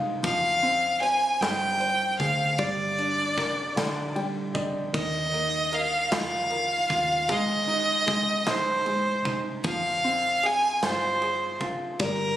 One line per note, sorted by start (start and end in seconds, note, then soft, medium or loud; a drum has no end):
0.00 0.22 C2 medium
0.00 0.21 G#3 medium
0.00 0.26 D#4 medium
0.00 0.20 F4 medium
0.00 0.26 D#5 medium
0.00 0.20 F5 medium
0.23 1.37 F2 loud
0.23 2.54 F3 medium
0.23 0.99 F5 loud
0.23 kick loud
0.23 ride medium
0.63 2.15 C4 medium
0.63 ride soft
1.01 1.78 C5 medium
1.01 1.42 G#5 loud
1.01 ride soft
1.41 2.15 G2 medium
1.41 2.18 G#4 medium
1.41 2.19 G5 loud
1.41 snare loud
1.41 ride medium
1.80 2.56 C5 medium
1.80 ride soft
2.20 2.57 D2 medium
2.20 2.58 G#4 medium
2.20 2.60 F5 medium
2.20 kick medium
2.20 ride soft
2.58 3.72 G1 loud
2.58 4.14 G3 medium
2.58 4.16 D5 medium
2.58 kick loud
2.58 ride medium
2.98 4.51 D4 medium
2.98 ride soft
3.37 4.90 A#4 medium
3.37 kick medium
3.37 snare soft
3.37 ride soft
3.76 4.51 A#1 medium
3.76 4.90 D3 medium
3.76 snare loud
3.76 ride medium
4.16 4.92 G3 medium
4.16 4.52 G5 medium
4.16 ride soft
4.54 4.92 A#1 medium
4.54 4.93 D5 soft
4.54 4.91 D#5 medium
4.54 kick medium
4.54 ride soft
4.93 6.08 D#2 loud
4.93 7.25 D#3 medium
4.93 5.76 D#5 medium
4.93 kick loud
4.93 ride medium
5.32 6.85 A#3 medium
5.32 ride soft
5.72 6.49 A#4 medium
5.72 6.13 F5 medium
5.72 ride soft
6.11 6.86 F2 medium
6.11 6.87 F4 medium
6.11 7.34 F5 medium
6.11 snare loud
6.11 ride medium
6.50 7.27 A#4 medium
6.50 ride soft
6.89 7.27 D#2 medium
6.89 7.27 F4 medium
6.89 kick medium
6.89 ride soft
7.29 8.43 G#1 loud
7.29 8.05 G#3 medium
7.29 8.51 D#5 loud
7.29 kick loud
7.29 ride medium
7.67 8.45 D#4 medium
7.67 ride soft
8.06 8.84 G#3 medium
8.06 kick medium
8.06 snare soft
8.06 ride soft
8.46 9.21 A#1 medium
8.46 9.23 D#4 medium
8.46 9.37 C5 medium
8.46 snare loud
8.46 ride medium
8.85 9.62 G#3 medium
8.85 ride soft
9.24 9.62 C2 medium
9.24 9.63 D#4 medium
9.24 kick medium
9.24 ride soft
9.64 10.78 F2 loud
9.64 11.96 F3 medium
9.64 10.48 F5 loud
9.64 kick loud
9.64 ride medium
10.04 11.57 C4 medium
10.04 ride soft
10.43 11.20 G#4 medium
10.43 10.84 G#5 loud
10.43 ride soft
10.82 11.61 G2 medium
10.82 11.58 F4 medium
10.82 11.58 C5 medium
10.82 snare loud
10.82 ride medium
11.22 11.98 G#4 medium
11.22 ride soft
11.60 11.98 D2 medium
11.60 11.98 F4 medium
11.60 kick medium
11.60 ride soft
11.99 12.37 G1 loud
11.99 12.37 G3 medium
11.99 12.37 A#4 loud
11.99 kick loud
11.99 ride medium